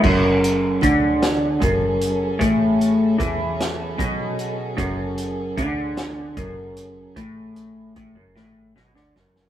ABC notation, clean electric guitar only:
X:1
M:6/8
L:1/16
Q:3/8=50
K:F#m
V:1 name="Clean electric guitar" clef=bass
F,,4 D,4 F,,4 | A,,4 E,4 B,,4 | F,,4 D,4 F,,4 | A,,4 A,, F,, A,,2 B,, D, F,,2 |]